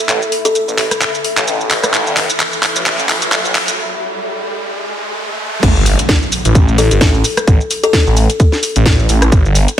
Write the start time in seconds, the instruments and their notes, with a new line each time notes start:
Already playing: ambient pad A4 E5 B5, riser
0.09 detuned saw bass A1, clap, closed hi-hat, shaker
0.22 shaker
0.32 open hi-hat
0.45 kalimba A4, closed hi-hat, shaker
0.55 closed hi-hat, shaker
0.68 detuned saw bass A1, shaker
0.78 clap, open hi-hat
0.91 cross-stick, closed hi-hat, shaker
1.01 clap, closed hi-hat, shaker
1.15 shaker
1.24 open hi-hat
1.37 detuned saw bass A1, clap, closed hi-hat, shaker
1.48 closed hi-hat, shaker
1.61 shaker
1.71 detuned saw bass A1, clap, open hi-hat
1.84 cross-stick, closed hi-hat, shaker
1.94 detuned saw bass A1, clap, closed hi-hat, shaker
2.07 detuned saw bass G1, shaker
2.17 clap, open hi-hat
2.30 closed hi-hat, shaker
2.40 clap, closed hi-hat, shaker
2.53 shaker
2.63 clap, open hi-hat
2.76 detuned saw bass A1, closed hi-hat, shaker
2.86 clap, closed hi-hat, shaker
2.99 shaker
3.09 clap, open hi-hat
3.22 detuned saw bass G1, closed hi-hat, shaker
3.32 detuned saw bass A1, clap, closed hi-hat, shaker
3.45 shaker
3.55 clap, open hi-hat
3.68 closed hi-hat, shaker
5.63 detuned saw bass A1, kick, closed hi-hat, crash, impact, shaker
5.76 detuned saw bass G1, shaker
5.86 open hi-hat, shaker
5.99 closed hi-hat, shaker
6.09 kick, snare, closed hi-hat, shaker
6.22 shaker
6.32 open hi-hat, shaker
6.45 detuned saw bass A1, closed hi-hat, shaker
6.55 kick, closed hi-hat, shaker
6.68 shaker
6.78 kalimba A4, open hi-hat, shaker
6.91 detuned saw bass G1, closed hi-hat, shaker
7.01 detuned saw bass A1, kick, snare, closed hi-hat, shaker
7.14 shaker
7.24 open hi-hat, shaker
7.37 cross-stick, closed hi-hat, shaker
7.47 detuned saw bass A1, kick, closed hi-hat, shaker
7.61 shaker
7.71 open hi-hat, shaker
7.84 kalimba A4, closed hi-hat, shaker
7.93 kick, snare, closed hi-hat, shaker
8.07 detuned saw bass A1, shaker
8.17 open hi-hat, shaker
8.30 closed hi-hat, shaker
8.40 kick, closed hi-hat, shaker
8.52 snare, shaker
8.63 open hi-hat, shaker
8.76 detuned saw bass A1, closed hi-hat, shaker
8.86 kick, snare, closed hi-hat, shaker
8.99 shaker
9.09 detuned saw bass A1, open hi-hat, shaker
9.22 cross-stick, closed hi-hat, shaker
9.32 detuned saw bass A1, kick, closed hi-hat, shaker
9.45 detuned saw bass G1, shaker
9.55 open hi-hat, shaker
9.68 closed hi-hat, shaker